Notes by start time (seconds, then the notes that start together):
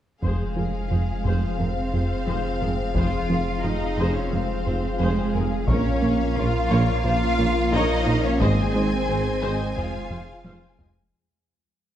0.22 F1 F2 F3 G#3 C4 F4 G#4 C5 F5, taiko
0.56 F1 F2 F3 C4 G#4 A#4
0.90 F1 F2 F4 G#4 C5
1.25 F1 F2 F3 G#4 C5, taiko
1.59 F1 F2 G#3 C4 G#4 A#4 C5
1.93 F1 F2 F4 G#4 C5
2.26 F1 F2 F3 G#4 C5
2.61 F1 F2 G#3 G#4 A#4
2.95 F1 F2 F3 F4 G#4 C5 F5, taiko
3.29 F1 F2 F3 C4 G#4 A#4
3.63 F1 F2 D#4 F4 G#4 C5 D#5
3.97 F1 F2 F3 G#4 C5
4.14 C#4 C#5
4.31 F1 F2 G#3 C4 G#4 A#4 C5
4.66 F1 F2 F4 G#4 C5
4.99 F1 F2 F3 G#3 G#4 C5
5.34 F1 F2 G#3 G#4 A#4
5.68 A#1 A#2 F3 A#3 C#4 F4 A#4 C#5 F5, taiko
6.02 A#1 A#3 F4 A#4 C#5
6.36 A#1 A#2 F4 A#4 C#5 F5
6.70 A#1 A#2 A#3 A#4 C#5
7.05 A#1 A#2 C#4 F4 A#4 C5 F5
7.39 A#1 A#2 A#4 C#5
7.72 A#1 A#2 A#3 D#4 A#4 C#5 D#5
8.06 A#1 A#2 C#4 A#4 C5
8.25 C#4 C#5
8.40 G#1 G#2 D#3 G#3 C4 G#4 C5 D#5 G#5, taiko
8.74 G#1 G#3 D#4 C5 D#5
9.08 G#1 G#2 G#4 C5 D#5
9.43 G#1 G#2 G#3 C5 D#5
9.76 F1 F2 F3 G#3 F4 C5 D#5 F5, taiko low
10.11 F1 F2 F4 C5 F5, taiko low-mid
10.45 F1 F2 F3 C5 F5, taiko high
10.79 F1 F2 G#3 C5 D#5, taiko low